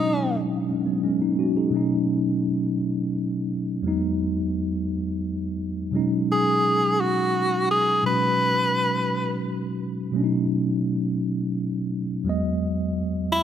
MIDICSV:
0, 0, Header, 1, 3, 480
1, 0, Start_track
1, 0, Key_signature, 5, "major"
1, 0, Tempo, 701754
1, 1180, Time_signature, 6, 3, 24, 8
1, 9186, End_track
2, 0, Start_track
2, 0, Title_t, "Tenor saxophone"
2, 0, Program_c, 0, 66
2, 0, Note_on_c, 0, 63, 69
2, 261, Note_off_c, 0, 63, 0
2, 4322, Note_on_c, 0, 68, 79
2, 4790, Note_on_c, 0, 66, 74
2, 4800, Note_off_c, 0, 68, 0
2, 5265, Note_off_c, 0, 66, 0
2, 5273, Note_on_c, 0, 68, 79
2, 5490, Note_off_c, 0, 68, 0
2, 5515, Note_on_c, 0, 71, 86
2, 6440, Note_off_c, 0, 71, 0
2, 9114, Note_on_c, 0, 64, 106
2, 9186, Note_off_c, 0, 64, 0
2, 9186, End_track
3, 0, Start_track
3, 0, Title_t, "Tine electric piano"
3, 0, Program_c, 1, 4
3, 0, Control_c, 1, 64, 127
3, 0, Note_on_c, 1, 47, 54
3, 0, Note_on_c, 1, 54, 52
3, 0, Note_on_c, 1, 56, 49
3, 0, Note_on_c, 1, 61, 50
3, 0, Note_on_c, 1, 62, 43
3, 0, Note_on_c, 1, 63, 64
3, 445, Note_off_c, 1, 54, 0
3, 452, Note_off_c, 1, 56, 0
3, 455, Note_off_c, 1, 61, 0
3, 472, Note_on_c, 1, 61, 46
3, 476, Note_on_c, 1, 56, 42
3, 484, Note_off_c, 1, 63, 0
3, 580, Note_off_c, 1, 61, 0
3, 582, Note_off_c, 1, 56, 0
3, 588, Note_on_c, 1, 59, 58
3, 591, Note_on_c, 1, 54, 50
3, 698, Note_off_c, 1, 59, 0
3, 700, Note_off_c, 1, 54, 0
3, 708, Note_on_c, 1, 61, 59
3, 711, Note_on_c, 1, 56, 54
3, 818, Note_off_c, 1, 61, 0
3, 820, Note_off_c, 1, 56, 0
3, 832, Note_on_c, 1, 63, 55
3, 836, Note_on_c, 1, 58, 42
3, 940, Note_off_c, 1, 63, 0
3, 942, Note_off_c, 1, 58, 0
3, 950, Note_on_c, 1, 66, 60
3, 956, Note_on_c, 1, 61, 48
3, 1059, Note_off_c, 1, 66, 0
3, 1062, Note_off_c, 1, 61, 0
3, 1073, Note_on_c, 1, 68, 47
3, 1075, Note_on_c, 1, 63, 45
3, 1149, Note_off_c, 1, 47, 0
3, 1167, Note_on_c, 1, 47, 64
3, 1175, Note_on_c, 1, 54, 57
3, 1184, Note_on_c, 1, 57, 60
3, 1188, Control_c, 1, 64, 0
3, 1194, Note_off_c, 1, 62, 0
3, 1196, Note_on_c, 1, 61, 60
3, 1198, Note_off_c, 1, 63, 0
3, 1206, Note_on_c, 1, 63, 65
3, 1294, Note_off_c, 1, 68, 0
3, 1319, Control_c, 1, 64, 127
3, 2586, Note_off_c, 1, 47, 0
3, 2590, Note_off_c, 1, 54, 0
3, 2595, Note_off_c, 1, 57, 0
3, 2601, Note_off_c, 1, 61, 0
3, 2605, Note_off_c, 1, 63, 0
3, 2612, Note_on_c, 1, 40, 61
3, 2620, Note_on_c, 1, 54, 56
3, 2629, Control_c, 1, 64, 0
3, 2631, Note_on_c, 1, 56, 51
3, 2645, Note_on_c, 1, 59, 59
3, 2653, Note_on_c, 1, 63, 74
3, 2752, Control_c, 1, 64, 127
3, 4029, Note_off_c, 1, 40, 0
3, 4033, Note_off_c, 1, 54, 0
3, 4038, Note_off_c, 1, 56, 0
3, 4044, Note_on_c, 1, 47, 62
3, 4045, Note_off_c, 1, 59, 0
3, 4049, Note_off_c, 1, 63, 0
3, 4055, Note_on_c, 1, 54, 60
3, 4066, Note_on_c, 1, 56, 58
3, 4067, Control_c, 1, 64, 0
3, 4073, Note_on_c, 1, 61, 60
3, 4080, Note_on_c, 1, 63, 68
3, 4183, Control_c, 1, 64, 127
3, 5465, Note_off_c, 1, 47, 0
3, 5470, Note_off_c, 1, 54, 0
3, 5475, Note_off_c, 1, 56, 0
3, 5479, Note_off_c, 1, 61, 0
3, 5483, Note_off_c, 1, 63, 0
3, 5489, Note_on_c, 1, 47, 54
3, 5499, Note_on_c, 1, 54, 50
3, 5510, Note_on_c, 1, 56, 53
3, 5518, Note_on_c, 1, 61, 47
3, 5528, Note_on_c, 1, 66, 54
3, 6907, Note_off_c, 1, 47, 0
3, 6912, Note_off_c, 1, 54, 0
3, 6917, Note_off_c, 1, 56, 0
3, 6920, Note_on_c, 1, 47, 65
3, 6921, Note_off_c, 1, 61, 0
3, 6926, Note_off_c, 1, 66, 0
3, 6931, Note_on_c, 1, 54, 64
3, 6939, Note_on_c, 1, 57, 58
3, 6950, Control_c, 1, 64, 0
3, 6952, Note_on_c, 1, 61, 58
3, 6965, Note_on_c, 1, 62, 53
3, 6997, Note_off_c, 1, 62, 0
3, 7003, Note_on_c, 1, 63, 66
3, 7051, Control_c, 1, 64, 127
3, 8342, Note_off_c, 1, 47, 0
3, 8348, Note_off_c, 1, 54, 0
3, 8352, Note_off_c, 1, 57, 0
3, 8358, Note_off_c, 1, 61, 0
3, 8370, Note_on_c, 1, 40, 61
3, 8379, Note_on_c, 1, 54, 55
3, 8384, Note_off_c, 1, 63, 0
3, 8389, Note_on_c, 1, 56, 57
3, 8390, Control_c, 1, 64, 0
3, 8402, Note_on_c, 1, 59, 61
3, 8409, Note_on_c, 1, 75, 71
3, 8517, Control_c, 1, 64, 127
3, 9186, Note_off_c, 1, 40, 0
3, 9186, Note_off_c, 1, 54, 0
3, 9186, Note_off_c, 1, 56, 0
3, 9186, Note_off_c, 1, 59, 0
3, 9186, Note_off_c, 1, 75, 0
3, 9186, End_track
0, 0, End_of_file